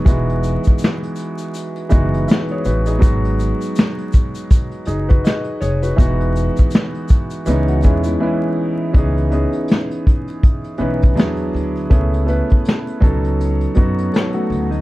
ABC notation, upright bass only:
X:1
M:4/4
L:1/16
Q:"Swing 16ths" 1/4=81
K:C#m
V:1 name="Upright bass" clef=bass
E,,,3 z6 z F,,,2 z2 A,,,2 | G,,,3 z6 z F,,,2 z2 ^E,,,2 | E,,,3 z4 z C,,2 E,,2 z4 | C,,3 z6 z B,,,2 E,,2 =D,,2 |
C,,3 z3 C,,4 F,,2 z2 =D,,2 |]